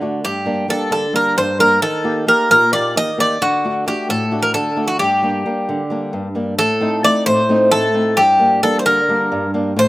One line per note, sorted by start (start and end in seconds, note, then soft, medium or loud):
0.00 0.22 D3 medium
0.00 0.19 A3 soft
0.00 0.19 D4 soft
0.00 0.19 F#4 soft
0.24 0.68 G2 medium
0.24 0.66 G4 medium
0.46 0.67 G3 soft
0.46 0.67 A#3 soft
0.46 0.68 D4 medium
0.68 1.05 G3 soft
0.68 1.05 A#3 soft
0.68 1.05 D4 soft
0.68 0.90 A4 medium
0.91 1.35 D3 medium
0.91 1.13 A4 medium
1.13 1.50 G3 soft
1.13 1.50 A#3 soft
1.13 1.50 D4 soft
1.13 1.36 A#4 medium
1.37 1.81 G2 medium
1.37 1.60 C5 medium
1.59 1.77 G3 soft
1.59 1.78 A#3 soft
1.59 1.78 D4 medium
1.59 1.81 A#4 medium
1.82 2.26 D#3 medium
1.82 2.24 A4 medium
2.04 2.25 A#3 soft
2.04 2.26 D#4 soft
2.04 2.26 G4 medium
2.27 2.63 A#3 medium
2.27 2.64 D#4 soft
2.27 2.64 G4 medium
2.27 2.50 A#4 medium
2.50 2.94 A#2 medium
2.50 2.72 A#4 medium
2.73 3.10 A#3 soft
2.73 3.10 D#4 soft
2.73 3.10 G4 medium
2.73 2.96 D5 medium
2.96 3.40 D#3 medium
2.96 3.18 D#5 loud
3.18 3.36 A#3 soft
3.18 3.36 D#4 soft
3.18 3.36 G4 medium
3.18 3.40 D5 medium
3.41 3.85 D3 medium
3.41 3.84 F#4 medium
3.64 3.85 A3 medium
3.64 3.86 D4 soft
3.64 3.86 F#4 medium
3.86 4.23 A3 medium
3.86 4.23 D4 soft
3.86 4.23 F#4 medium
3.86 4.08 G4 medium
4.09 4.53 A2 medium
4.09 4.41 A4 medium
4.31 4.68 A3 soft
4.31 4.68 D4 soft
4.31 4.68 F#4 medium
4.42 4.54 A#4 medium
4.54 4.98 D3 medium
4.54 4.86 A4 medium
4.76 4.95 A3 soft
4.76 4.95 D4 soft
4.76 4.95 F#4 medium
4.88 4.99 F#4 medium
4.99 5.44 G2 medium
4.99 6.09 G4 medium
5.22 5.44 G3 soft
5.22 5.44 A#3 soft
5.22 5.45 D4 medium
5.46 5.82 G3 soft
5.46 5.82 A#3 soft
5.46 5.82 D4 soft
5.69 6.12 D3 medium
5.90 6.27 G3 soft
5.90 6.27 A#3 soft
5.90 6.27 D4 medium
6.13 6.57 G2 medium
6.35 6.54 G3 soft
6.35 6.54 A#3 soft
6.35 6.54 D4 soft
6.59 7.03 A2 medium
6.59 7.01 A4 loud
6.80 7.02 A3 medium
6.80 7.02 C4 soft
6.80 7.03 D#4 medium
7.03 7.40 A3 medium
7.03 7.40 C4 soft
7.03 7.40 D#4 medium
7.03 7.25 D5 medium
7.26 7.71 A2 medium
7.26 7.71 C5 medium
7.49 7.86 A3 soft
7.49 7.86 C4 soft
7.49 7.86 D#4 medium
7.72 8.16 A2 medium
7.72 8.19 A4 loud
7.94 8.13 A3 soft
7.94 8.13 C4 soft
7.94 8.13 D#4 medium
8.17 8.61 G2 medium
8.17 8.59 G4 medium
8.39 8.61 G3 soft
8.39 8.62 A#3 soft
8.39 8.62 D4 medium
8.63 8.99 G3 medium
8.63 8.99 A#3 soft
8.63 8.99 D4 medium
8.63 8.79 A4 medium
8.79 8.85 C5 medium
8.85 9.29 D3 medium
8.85 9.50 A#4 medium
9.09 9.45 G3 soft
9.09 9.45 A#3 soft
9.09 9.45 D4 medium
9.32 9.75 G2 medium
9.54 9.72 G3 medium
9.54 9.72 A#3 soft
9.54 9.72 D4 medium
9.76 9.88 A2 medium
9.76 9.88 C5 loud